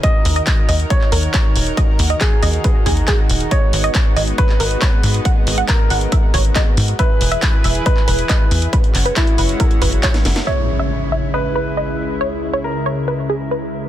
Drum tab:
HH |x-oxx-oxx-oxx-ox|x-oxx-oxx-oxx-ox|x-oxx-oxx-oxx-ox|x-oxx-oxx-oxx-ox|
CP |----x----x--x---|----x-------x---|----x----x--x---|----x-------x---|
SD |----------------|----------------|----------------|----------------|
BD |o---o---o---o---|o---o---o-o-o---|o---o---o---o---|o---o---o-o-o---|

HH |x-oxx-oxx-oxx-ox|xxoxxxoxxxoxxxox|----------------|----------------|
CP |----x----x--x---|--x-x-------x---|----------------|----------------|
SD |----------------|-------------ooo|----------------|----------------|
BD |o---o---o---o---|o---o---o-o-o---|----------------|----------------|